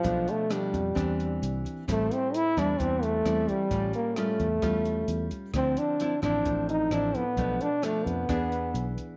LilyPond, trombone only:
\new Staff \with { instrumentName = "Trombone" } { \time 4/4 \key a \phrygian \tempo 4 = 131 f8 a8 g2~ g8 r8 | a8 c'8 e'8 d'8 c'8 a4 g8~ | g8 bes8 a2~ a8 r8 | c'8 d'4 d'4 ees'8 d'8 b8~ |
b8 d'8 a8 b2 r8 | }